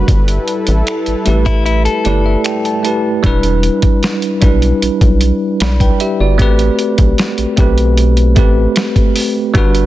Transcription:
Already playing: analog synth pad G3 B4, tine electric piano B4
0.08 analog synth bass G1, analog synth pad E4 A4, kick, closed hi-hat
0.28 closed hi-hat
0.48 closed hi-hat
0.67 analog synth bass A1, closed hi-hat
0.87 finger snap, closed hi-hat
1.06 analog synth bass A1, closed hi-hat
1.25 analog synth bass A1, tine electric piano A3 E4 G4 B4, closed hi-hat
1.46 clean electric guitar E4, kick, closed hi-hat
1.66 clean electric guitar E4, closed hi-hat
1.85 clean electric guitar A4, closed hi-hat
2.04 analog synth bass G1, tine electric piano A3 E4 G4 B4 D5, closed hi-hat
2.26 tine electric piano E5
2.44 tine electric piano G5, finger snap, closed hi-hat
2.65 tine electric piano A5, closed hi-hat
2.83 tine electric piano A3 E4 G4 B4 A5, closed hi-hat
3.23 analog synth bass E1, tine electric piano G3 D4 E4 B4, kick, closed hi-hat
3.43 closed hi-hat
3.63 closed hi-hat
3.82 analog synth bass B1, kick, closed hi-hat
4.03 snare, closed hi-hat
4.22 closed hi-hat
4.41 analog synth bass B1, tine electric piano G3 D4 E4 B4, kick, closed hi-hat
4.62 closed hi-hat
4.82 analog synth bass B1, closed hi-hat
5.01 analog synth bass B1, kick, closed hi-hat
5.21 closed hi-hat
5.60 analog synth bass B1, tine electric piano D5 B5, snare, closed hi-hat
5.80 tine electric piano B4 G5, kick, closed hi-hat
6.00 tine electric piano G4 E5, closed hi-hat
6.20 analog synth bass G1, tine electric piano F#4 D5
6.38 analog synth bass A1, tine electric piano A3 C4 G4 B4, kick, closed hi-hat
6.59 closed hi-hat
6.79 closed hi-hat
6.98 analog synth bass B1, kick, closed hi-hat
7.18 snare, closed hi-hat
7.38 analog synth bass B1, closed hi-hat
7.57 analog synth bass B1, tine electric piano A3 C4 G4 B4, kick, closed hi-hat
7.78 closed hi-hat
7.97 closed hi-hat
8.17 closed hi-hat
8.36 analog synth bass A1, tine electric piano A3 C4 G4 B4, kick, closed hi-hat
8.76 snare, closed hi-hat
8.96 kick, closed hi-hat
9.16 open hi-hat
9.54 analog synth bass G1, tine electric piano G3 D4 F#4 B4, kick, closed hi-hat
9.75 closed hi-hat

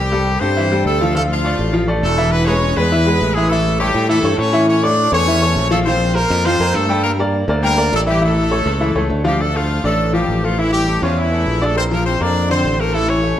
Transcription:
Already playing: fingered electric bass C2, horn section G4
0.00 horn section G3
0.12 upright piano G3 G4 A4
0.40 fingered electric bass G2, upright piano G3 G4 A4, horn section C4 C5
0.56 upright piano E3 E4 E5
0.72 upright piano G3 G4 A4
0.85 fingered electric bass D2, horn section A3 A4
1.01 upright piano F3 F4 F5
1.15 upright piano F3 F4 F5, horn section A3 A4
1.31 horn section F3 F4
1.44 upright piano A3 A4 D5
1.59 fingered electric bass A1
1.73 upright piano F3 F4 F5
1.88 upright piano A3 A4 D5
2.02 fingered electric bass E1, horn section A3 A4
2.18 upright piano E3 E4 E5
2.31 horn section B3 B4
2.45 upright piano G#3 G#4 B4, horn section C#4 C#5
2.76 fingered electric bass E2, upright piano G#3 G#4 B4, horn section B3 B4
2.91 upright piano E3 E4 E5
3.07 upright piano G#3 G#4 B4
3.21 fingered electric bass A1
3.34 upright piano E3 E4 E5, horn section G#3 G#4
3.49 upright piano E3 E4 E5, horn section A3 A4
3.79 horn section G3 G4, upright piano A3 A4 C#5
3.94 fingered electric bass A2
4.09 upright piano E3 E4 E5, horn section A3 A4
4.23 fingered electric bass G2, upright piano A3 A4 C#5
4.37 fingered electric bass A2, horn section C#4 C#5
4.53 upright piano E3 E4 E5
4.68 horn section C#4 C#5
4.82 upright piano A3 A4 C#5, horn section D4 D5
5.12 fingered electric bass E2, upright piano A3 A4 C#5, horn section C#4 C#5
5.28 upright piano E3 E4 E5
5.42 upright piano A3 A4 C#5
5.56 fingered electric bass A#1
5.71 upright piano F3 F4 F5, horn section A3 A4
5.85 upright piano F3 F4 F5, horn section C4 C5
6.15 upright piano A#3 A#4 C5, horn section A#3 A#4
6.30 fingered electric bass F2
6.45 upright piano F3 F4 F5, horn section C4 C5
6.60 fingered electric bass F2, upright piano A#3 A#4 C5
6.74 fingered electric bass G2, horn section A3 A4
6.89 upright piano G3 G4 G5
7.04 horn section A#3 A#4
7.19 upright piano A#3 A#4 D5
7.48 fingered electric bass D2, upright piano A#3 A#4 D5
7.63 upright piano G3 G4 G5, horn section A#3 A#4
7.77 upright piano A#3 A#4 D5
7.92 fingered electric bass A1, horn section A3 A4
8.06 upright piano E3 E4 E5, horn section G3 G4
8.22 upright piano E3 E4 E5, horn section A3 A4
8.51 upright piano A3 A4 C#5
8.66 fingered electric bass C#2
8.80 upright piano E3 E4 E5
8.95 fingered electric bass C#2, upright piano A3 A4 C#5
9.10 fingered electric bass D2
9.24 upright piano F3 F4 F5, horn section G3 G4
9.39 horn section A3 A4, upright piano D4 D5
9.54 horn section F3 F4, upright piano A3 A4
9.84 fingered electric bass A1, horn section A3 A4, upright piano D4 D5
10.13 upright piano F3 F4, horn section G3 G4
10.28 fingered electric bass A1
10.44 horn section F3 F4, upright piano A3 A4
10.59 upright piano E3 E4, horn section E3 E4
10.73 horn section G3 G4
10.88 upright piano A3 A4
11.02 fingered electric bass E2, horn section F3 F4, upright piano C#4 C#5
11.19 horn section E3 E4
11.32 upright piano A3 A4
11.46 fingered electric bass A#1
11.61 horn section A3 A4, upright piano D4 D5
11.76 upright piano A#3 A#4, horn section C4 C5
11.91 upright piano F3 F4, horn section A#3 A#4
12.06 horn section C4 C5
12.20 fingered electric bass F2, upright piano A#3 A#4, horn section D4 D5
12.50 upright piano D3 D4, horn section C4 C5
12.64 fingered electric bass A1
12.79 upright piano A3 A4, horn section A#3 A#4
12.94 upright piano E3 E4, horn section A3 A4
13.09 horn section C#4 C#5
13.23 upright piano A3 A4

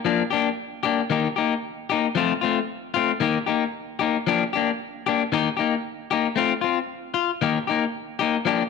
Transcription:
0.05 clean electric guitar F3 A#3 D4, muted clean electric guitar stroke
0.31 clean electric guitar A#3 D4 G4
0.83 clean electric guitar A#3 D4 G4
1.10 clean electric guitar D#3 A#3 D#4 G4
1.36 clean electric guitar A#3 D#4 G4
1.90 clean electric guitar A#3 D#4 G4
2.15 clean electric guitar F3 A3 C4 F4
2.41 clean electric guitar A3 C4 F4
2.94 clean electric guitar A3 C4 F4
3.20 clean electric guitar D#3 A#3 D#4 G4
3.47 clean electric guitar A#3 D#4 G4
3.99 clean electric guitar A#3 D#4 G4
4.27 clean electric guitar F3 A#3 D4 G4
4.53 clean electric guitar A#3 D4 G4
5.06 clean electric guitar A#3 D4 G4
5.32 clean electric guitar D#3 A#3 D#4 G4
5.57 clean electric guitar A#3 D#4 G4
6.11 clean electric guitar A#3 D#4 G4
6.36 clean electric guitar A3 C4 F4
6.61 clean electric guitar C4 F4
7.14 clean electric guitar F4
7.42 clean electric guitar D#3 A#3 D#4 G4
7.67 clean electric guitar A#3 D#4 G4
8.19 clean electric guitar A#3 D#4 G4
8.45 clean electric guitar F3 A#3 D4 G4

